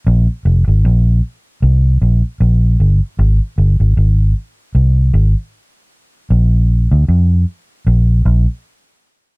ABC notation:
X:1
M:4/4
L:1/16
Q:"Swing 16ths" 1/4=77
K:Bbmix
V:1 name="Fingered electric bass" clef=bass
B,,, z F,,, A,,, B,,,2 z2 C,,2 B,,, z B,,,2 G,,, z | A,,, z G,,, A,,, A,,,2 z2 C,,2 A,,, z4 z | B,,,3 D,, F,,2 z2 B,,,2 B,,, z4 z |]